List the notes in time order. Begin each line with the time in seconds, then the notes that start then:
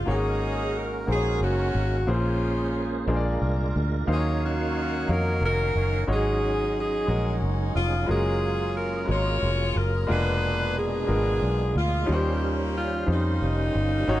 0.06 G#1 G#2 G#3 A#3 D#4 F#4 G#4 A#4 C#5
0.10 C#4 D#4 G#4
0.78 A#4
1.07 A#1 A#3 D#4 F#4 G#4 C5
1.15 C#5
1.41 F#1 A#3 C#4 F#4
1.75 G#1
2.07 A#1 A#2 G#3 A#3 C#4 F4 G#4 C5
2.11 C#4 F4 C5
3.08 A#1 A#2 G#3 A#3 D4 F4 G#4 A#4 C5
3.16 D5
3.42 C2
3.76 D2
4.07 D#2 D#3 F#3 A#3 D#4 C5 C#5 F5
4.11 C#4 F4 G#4
4.16 C#5
4.45 A#3 C#4 F#4
5.07 F2 A#3 D#4 F#4 C#5 F5
5.12 A#4
5.41 F1 C#4 A#4
5.46 F#4
5.75 F#1
6.07 G#1 G#2 F#3 G#3 C#4 D#4 F#4 G#4 C#5
6.13 C#4 D#4 G#4
6.79 C#4 D#4 G#4
7.07 A#1 G#3 C#4 D#4 F#4 A#4
7.42 F#1
7.75 F1 F4
8.06 F#1 F#3 G#3 A3 C#4 F4 G#4 A#4
8.11 C#4 F4 G#4
8.15 A#3
8.77 A#4
9.06 G#1 F#3 G#3 C#4 F4 A#4
9.11 F4 A#4 C#5
9.15 C6
9.42 F1
9.76 F#1 A#4
10.07 F1 B2 G#3 A#3 B3 D4 F4 G#4 B4
10.77 B3 D4 G#4
11.07 G#1 G#3 B3 D4 F4 A#4
11.42 B1
11.75 D2 F4
12.06 D#2 D#3 G3 C#4 D#4 F4 A#4
12.10 G3 A#3 C#4 G4 A#4 C5
12.15 C5
12.77 F4
13.06 F2 G3 C#4 D#4 F4 C5
13.10 G3 A#3 D#4
13.42 F1
13.75 G1
14.08 G#1 G#2 D#3 C#4 D#4 F#4 C5 C#5
14.17 C#5